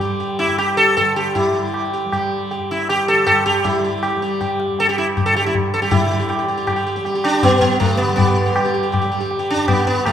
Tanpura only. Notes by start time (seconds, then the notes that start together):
Already playing: G2 D3 G3
0.47 G2
0.99 D3
1.53 G3
2.05 G3
2.59 G2
3.12 D3
3.64 G3
4.17 G3
4.71 G2
5.23 D3
5.74 G3
5.91 D3
6.44 G3
6.97 G3
7.48 G2
8.01 D3
8.52 G3
9.04 G3
9.55 G2
10.08 D3